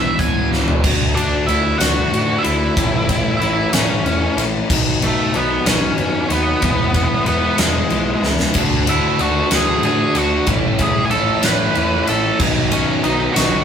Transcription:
Already playing: picked electric bass B1, distorted electric guitar E2 B2 E3, lead electric guitar E5
0.18 picked electric bass C#2, distorted electric guitar E2 B2 E3, lead electric guitar G#5, kick, closed hi-hat
0.52 distorted electric guitar E2 B2 E3, snare
0.68 floor tom
0.83 picked electric bass D2, distorted electric guitar D3 A3 D4 F#4, kick, crash
1.15 distorted electric guitar A3 D4 F#4, lead electric guitar D4 D5, ride
1.47 picked electric bass D2, distorted electric guitar D3 A3 D4 F#4, lead electric guitar E4 E5, ride
1.78 picked electric bass D2, distorted electric guitar A3 D4 F#4, lead electric guitar F#4 F#5, snare, ride
2.11 picked electric bass A2, distorted electric guitar D3 A3 D4 F#4, ride
2.38 distorted electric guitar F#4, lead electric guitar E5
2.43 picked electric bass D2, distorted electric guitar A3 D4, lead electric guitar E4, ride
2.75 picked electric bass A1, distorted electric guitar A2 E3 A3 C#4 E4, kick, ride
3.07 distorted electric guitar A3 C#4 E4, kick, ride
3.37 distorted electric guitar E3, lead electric guitar E4 E5
3.41 picked electric bass A1, distorted electric guitar A3 C#4 E4, ride
3.73 picked electric bass A1, distorted electric guitar A3 C#4 E4, lead electric guitar C#4 C#5, snare, ride
4.04 picked electric bass E2, distorted electric guitar E3 A3 C#4 E4, ride
4.36 picked electric bass A#1, distorted electric guitar A3 C#4 E4, ride
4.69 picked electric bass B1, distorted electric guitar B2 D#3 F#3 B3 D#4, kick, crash
5.00 distorted electric guitar F#3 B3 D#4, lead electric guitar A3, ride
5.06 lead electric guitar A4
5.33 picked electric bass B1, distorted electric guitar D#3 F#3 B3 D#4, lead electric guitar B3, ride
5.37 lead electric guitar B4
5.65 picked electric bass B1, distorted electric guitar F#3 B3 D#4, lead electric guitar C#4 C#5, snare, ride
5.97 picked electric bass F#2, distorted electric guitar D#3 F#3 B3 D#4, ride
6.29 picked electric bass D#2, distorted electric guitar F#3 B3 D#4, lead electric guitar B3 B4, ride
6.61 picked electric bass E1, distorted electric guitar E3 G#3 B3 E4, kick, ride
6.93 distorted electric guitar G#3 B3 E4, kick, ride
7.26 picked electric bass E1, distorted electric guitar E3 G#3 B3 E4, lead electric guitar B3 B4, ride
7.58 picked electric bass E1, distorted electric guitar G#3 B3 E4, lead electric guitar G#3 G#4, snare, ride
7.89 picked electric bass B1, distorted electric guitar E3 G#3 B3 E4, ride
8.22 picked electric bass C#2, distorted electric guitar G#3 B3 E4, snare
8.39 snare
8.54 picked electric bass D2, distorted electric guitar D3 A3 D4 F#4, kick, crash
8.58 overdriven electric guitar A4
8.86 distorted electric guitar A3 D4 F#4, lead electric guitar E4 E5, overdriven electric guitar A4, ride
9.19 picked electric bass D2, distorted electric guitar D3 A3 D4 F#4, lead electric guitar F#4 F#5, overdriven electric guitar A4, ride
9.50 picked electric bass D2, overdriven electric guitar D3 A4, distorted electric guitar A3 D4 F#4, snare, ride
9.55 lead electric guitar G#4 G#5
9.82 picked electric bass A2, distorted electric guitar D3 A3 D4 F#4, lead electric guitar G#4, overdriven electric guitar A4, ride
9.87 lead electric guitar G#5
10.15 picked electric bass D2, distorted electric guitar A3 D4 F#4, lead electric guitar F#4 F#5, ride
10.46 picked electric bass A1, distorted electric guitar A2 E3 A3 C#4 E4, kick, ride
10.78 distorted electric guitar A3 C#4 E4, lead electric guitar G#4 G#5, kick, ride
11.06 lead electric guitar G#5
11.11 picked electric bass A1, distorted electric guitar E3 A3 C#4 E4, lead electric guitar A4 A5, ride
11.43 picked electric bass A1, overdriven electric guitar A2 E3, distorted electric guitar A3 C#4 E4, lead electric guitar B4 B5, snare, ride
11.75 picked electric bass E2, distorted electric guitar E3 A3 C#4 E4, ride
12.07 picked electric bass A1, distorted electric guitar C#4 E4, lead electric guitar A4 A5, ride
12.11 distorted electric guitar A3
12.39 picked electric bass B1, distorted electric guitar B2 D#3 F#3 B3 D#4, kick, crash
12.71 distorted electric guitar F#3 B3 D#4, lead electric guitar C#4 C#5, ride
13.03 picked electric bass B1, distorted electric guitar D#3 F#3 B3 D#4, lead electric guitar D#4 D#5, ride
13.33 picked electric bass B1, overdriven electric guitar D#3, distorted electric guitar B3 D#4, lead electric guitar F#4 F#5, snare, ride
13.38 overdriven electric guitar B2, distorted electric guitar F#3

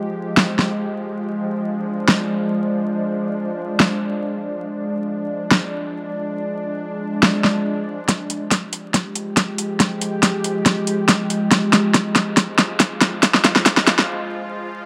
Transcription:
Already playing: synth drone F3 G#3 G4
0.37 snare
0.59 snare
1.23 synth drone D4
2.08 snare
3.80 snare
5.51 snare
7.23 snare
7.44 snare
8.08 synth drone F3 G#3 G4, kick, snare, closed hi-hat
8.30 closed hi-hat
8.51 kick, snare, closed hi-hat
8.73 closed hi-hat
8.94 kick, snare, closed hi-hat
9.16 closed hi-hat
9.37 kick, snare, closed hi-hat
9.58 closed hi-hat
9.80 kick, snare, closed hi-hat
10.01 closed hi-hat
10.23 kick, snare, closed hi-hat
10.44 closed hi-hat
10.66 kick, snare, closed hi-hat
10.87 closed hi-hat
11.09 kick, snare, closed hi-hat
11.30 closed hi-hat
11.51 synth drone F4, kick, snare, closed hi-hat
11.73 snare, closed hi-hat
11.94 kick, snare, closed hi-hat
12.16 snare, closed hi-hat
12.37 kick, snare, closed hi-hat
12.59 snare, closed hi-hat
12.80 kick, snare, closed hi-hat
13.01 snare, closed hi-hat
13.23 kick, snare, closed hi-hat
13.34 snare
13.44 snare, closed hi-hat
13.56 snare
13.66 kick, snare, closed hi-hat
13.77 snare
13.87 snare, closed hi-hat
13.99 snare

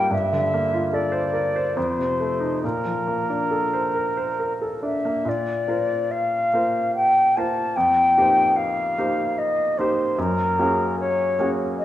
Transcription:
Already playing: grand piano G3 A#3 F4 A#4 D5 F5
0.11 grand piano G2, flute E5
0.33 grand piano D3
0.54 grand piano A#3
0.74 grand piano F4
0.93 grand piano A4, flute D5
1.12 grand piano C5
1.33 grand piano A#4
1.56 grand piano C5
1.76 grand piano F2, flute C5
1.98 grand piano C3
2.20 grand piano A3
2.40 grand piano D#4
2.63 grand piano A#2, flute A#4
2.85 grand piano F3
3.07 grand piano A#3
3.30 grand piano D4
3.51 grand piano A4
3.74 grand piano C5
3.95 grand piano A#4
4.17 grand piano C5
4.40 grand piano A#4
4.62 grand piano A4
4.83 grand piano D4, flute E5
5.05 grand piano A#3
5.25 grand piano A#2, flute D5
5.68 grand piano A#3 F4 A#4 C5
6.11 flute F5
6.53 grand piano A#3 F4 A#4 C5
6.95 flute G5
7.36 grand piano A#3 F4 A#4 C5, flute A5
7.76 grand piano F2, flute G5
8.18 grand piano A#3 D#4 G4 C5
8.56 flute F5
8.98 grand piano A#3 D#4 G4 C5
9.38 flute D#5
9.77 grand piano A#3 D#4 G4 C5, flute C5
10.18 grand piano F#2, flute A#4
10.59 grand piano A#3 C#4 F#4 G#4
10.99 flute C#5
11.39 grand piano A#3 C#4 F#4 G#4
11.78 flute D#5

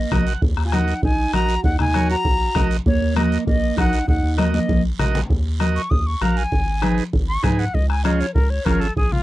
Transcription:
Already playing: clean electric guitar A#3, flute D#5
0.12 analog synth bass A#1, transistor combo organ F#4 A#4 D#5, bombo low, bombo rim, high conga, low conga, short guiro
0.27 transistor combo organ F#5, short guiro
0.42 analog synth bass D#2, bombo low, high conga, long guiro
0.57 analog synth bass D#2, bombo rim
0.65 clean electric guitar F4, flute G#5
0.72 clean electric guitar D#4, transistor combo organ F#4 A#4 D#5, flute F#5, bombo rim, high conga, short guiro
0.88 short guiro
1.02 analog synth bass A#1, clean electric guitar D#4, flute G#5, bombo low, high conga, long guiro
1.33 analog synth bass A#1, transistor combo organ F#4 A#4 D#5, clean electric guitar F#4, flute A#5, bombo rim, high conga, short guiro
1.49 short guiro
1.64 analog synth bass D#2, clean electric guitar D#4, flute F#5, bombo low, high conga, long guiro
1.79 analog synth bass D#2, clean electric guitar D#4, flute G#5, bombo rim, low conga
1.94 transistor combo organ F#4 A#4 C#5, bombo rim, high conga, short guiro
2.10 clean electric guitar F#4, flute A#5, short guiro
2.25 analog synth bass A#1, bombo low, high conga, long guiro
2.55 analog synth bass A#1, transistor combo organ F#4 A#4 D#5, bombo low, bombo rim, high conga, low conga, short guiro
2.71 short guiro
2.86 analog synth bass D#2, clean electric guitar A#3, flute C#5, bombo low, high conga, long guiro
3.01 analog synth bass D#2
3.16 clean electric guitar A#3, transistor combo organ F#4 A#4 D#5, flute D#5, bombo rim, high conga, short guiro
3.32 short guiro
3.47 analog synth bass A#1, clean electric guitar A#3, flute D#5, bombo low, high conga, long guiro
3.77 analog synth bass A#1, clean electric guitar D#4, transistor combo organ F#4 A#4 D#5, flute F#5, bombo low, bombo rim, high conga, short guiro
3.93 short guiro
4.08 analog synth bass D#2, clean electric guitar D#4, flute F#5, bombo low, high conga, long guiro
4.23 analog synth bass D#2
4.37 clean electric guitar A#3, transistor combo organ F#4 A#4 D#5, flute D#5, bombo rim, high conga, short guiro
4.54 clean electric guitar A#3, flute D#5, high conga, short guiro
4.69 analog synth bass A#1, bombo low, high conga, long guiro
4.99 analog synth bass A#1, transistor combo organ F#4 A#4 D#5, bombo rim, low conga, short guiro
5.15 low conga, short guiro
5.30 analog synth bass D#2, bombo low, high conga, long guiro
5.60 transistor combo organ F#4 A#4 D#5, bombo rim, high conga, short guiro
5.76 flute C#6, short guiro
5.90 analog synth bass D#2, flute D#6, bombo low, high conga, long guiro
6.07 flute C#6
6.21 analog synth bass A#1, transistor combo organ F#4 A#4 F5, flute A#5, bombo rim, high conga, short guiro
6.37 flute G#5, short guiro
6.52 analog synth bass G#1, bombo low, high conga, long guiro
6.82 transistor combo organ D#4 G#4 B4, bombo rim, high conga, short guiro
6.98 short guiro
7.13 analog synth bass G#1, bombo low, high conga, long guiro
7.28 flute C#6
7.43 analog synth bass G#2, transistor combo organ D#4 G#4 B4, flute G#5, bombo low, bombo rim, high conga, low conga, short guiro
7.59 flute F#5, short guiro
7.74 analog synth bass C#2, flute D#5, bombo low, high conga, long guiro
7.89 flute G#5, bombo rim
8.04 transistor combo organ C#4 F4 G#4, flute D#5, bombo rim, high conga, short guiro
8.20 flute C#5, short guiro
8.34 analog synth bass C#2, flute A#4, bombo low, high conga, long guiro
8.50 flute C#5
8.65 analog synth bass G#1, transistor combo organ C#4 F4 G#4, flute A#4, bombo low, bombo rim, high conga, short guiro
8.80 flute A4, short guiro
8.96 analog synth bass A#1, flute G#4, bombo low, high conga, long guiro
9.12 flute F4, low conga

